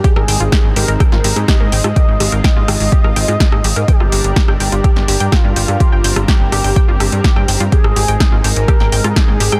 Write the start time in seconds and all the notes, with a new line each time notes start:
0.04 G#3 C4 D#4 G4 G#4, kick, closed hi-hat
0.16 G#1 A#4, cross-stick
0.28 G#1 G5, open hi-hat
0.40 G#1 F4, closed hi-hat
0.52 G4, kick, cross-stick, snare, closed hi-hat
0.64 G#1
0.76 G#1 G4 A#4, open hi-hat
0.88 G#1 A#4, closed hi-hat
1.00 G5, kick, cross-stick, closed hi-hat
1.12 G#1 F4, snare
1.24 G#1 G4, open hi-hat
1.36 G#2, cross-stick, closed hi-hat
1.48 G4 D#5, kick, snare, closed hi-hat
1.60 G#2 A#4
1.72 G#1 G5, open hi-hat
1.84 G#2 F4, cross-stick, closed hi-hat
1.96 F4 G4, kick, closed hi-hat
2.08 G#1
2.20 G#1 G4, cross-stick, open hi-hat
2.32 G#1 A#4, closed hi-hat
2.44 D#5 G5, kick, snare, closed hi-hat
2.56 G#1 F4
2.68 G#1 G4, cross-stick, open hi-hat
2.80 G#1, open hi-hat
2.92 G4, kick
3.04 G#1 A#4, cross-stick
3.16 G#1 G5, open hi-hat
3.28 G#2 F4, closed hi-hat
3.40 G4, kick, snare, closed hi-hat
3.52 G#2, cross-stick
3.64 G#1 G4, open hi-hat
3.76 G#2 A#4, closed hi-hat
3.88 G3 D4 G4 A#4 G5, kick, closed hi-hat
4.00 G1 F4, cross-stick
4.12 G1 G4, open hi-hat
4.24 G1, closed hi-hat
4.36 G4, kick, snare, closed hi-hat
4.48 G1 G5, cross-stick
4.60 G1 G4 G5, open hi-hat
4.72 G1 F4, closed hi-hat
4.84 G4, kick, cross-stick, closed hi-hat
4.96 G1, snare
5.08 G1 G4, open hi-hat
5.20 G2 G5, closed hi-hat
5.32 F4 G5, kick, cross-stick, snare, closed hi-hat
5.44 G2 F4
5.56 G1 G4, open hi-hat
5.68 G2, cross-stick, closed hi-hat
5.80 C4 G4, kick, closed hi-hat
5.92 G1 G5
6.04 G1 G5, open hi-hat
6.16 G1 F4, cross-stick, closed hi-hat
6.28 G4, kick, snare, closed hi-hat
6.40 G1
6.52 G1 G4, cross-stick, open hi-hat
6.64 G1 G5, open hi-hat
6.76 G5, kick, closed hi-hat
6.88 G1 F4
7.00 G1 G4, cross-stick, open hi-hat
7.12 G2, closed hi-hat
7.24 G4, kick, snare, closed hi-hat
7.36 G2 G5, cross-stick
7.48 G1 G5, open hi-hat
7.60 G2 F4, closed hi-hat
7.72 G#3 D#4 G4 G#4, kick, closed hi-hat
7.84 G#1, cross-stick
7.96 G#1 G4, open hi-hat
8.08 G#1 G5, closed hi-hat
8.20 G5, kick, cross-stick, snare, closed hi-hat
8.32 G#1 F4
8.44 G#1 G4 A#4, open hi-hat
8.56 G#1, closed hi-hat
8.68 G4, kick, cross-stick, closed hi-hat
8.80 G#1 G5, snare
8.92 G#1 G5, open hi-hat
9.04 G#2 F4, cross-stick, closed hi-hat
9.16 G4 G#4, kick, snare, closed hi-hat
9.28 G#2
9.40 G#1 G4, open hi-hat
9.52 G#2 G5, cross-stick, closed hi-hat